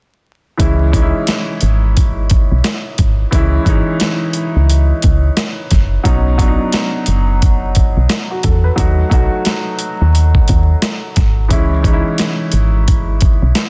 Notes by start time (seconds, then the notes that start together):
0.57 C#2 E3 G#3 C#4 E4, kick, closed hi-hat
0.92 E3 G#3 C#4 D#4, kick, closed hi-hat
1.02 E4
1.27 snare, closed hi-hat
1.61 G#1, closed hi-hat
1.97 kick, closed hi-hat
2.30 kick, closed hi-hat
2.52 B1
2.64 snare, closed hi-hat
2.98 G#1, kick, closed hi-hat
3.31 C#2 E3 G#3 C#4 E4, kick, closed hi-hat
3.65 G#1 E3 G#3 C#4 D#4, kick, closed hi-hat
4.00 snare, closed hi-hat
4.33 closed hi-hat
4.56 C#2
4.69 closed hi-hat
5.02 C#2, kick, closed hi-hat
5.37 snare, closed hi-hat
5.71 F#1, kick, snare, closed hi-hat
6.03 B1 F#3 B3 C#4 D#4, kick, closed hi-hat
6.38 F#3 B3 C#4 D4, kick, closed hi-hat
6.48 D#4
6.72 snare, closed hi-hat
7.06 F#1, closed hi-hat
7.42 kick, closed hi-hat
7.75 kick, closed hi-hat
7.97 B1
8.09 snare, closed hi-hat
8.30 F#4
8.43 E2 A4, kick, closed hi-hat
8.64 B4
8.76 D#2 F#3 A3 D#4 F#4, kick, closed hi-hat
9.10 B1 F#3 A3 D#4 F#4, kick, closed hi-hat
9.45 snare, closed hi-hat
9.79 closed hi-hat
10.01 D#2
10.15 closed hi-hat
10.35 kick
10.48 D#2, kick, closed hi-hat
10.82 snare, closed hi-hat
11.16 G#1, kick, snare, closed hi-hat
11.48 C#2 E3 G#3 C#4 E4, kick, closed hi-hat
11.83 E3 G#3 C#4 D#4, kick, closed hi-hat
11.93 E4
12.18 snare, closed hi-hat
12.52 G#1, closed hi-hat
12.88 kick, closed hi-hat
13.21 kick, closed hi-hat
13.42 B1
13.55 snare, closed hi-hat